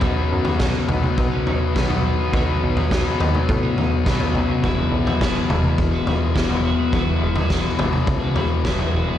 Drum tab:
SD |----o-------o---|----o-------o---|----o-------o---|----o-------o---|
T2 |------oo--------|-------o------o-|------oo--------|------oo--------|
FT |o--o--o---o--o--|o--o--o---o--o--|o--o--o---o--o--|o--o--o---o--o--|
BD |o---o---o---o---|o---o---o---o---|o---o---o---o---|o---o---o---o---|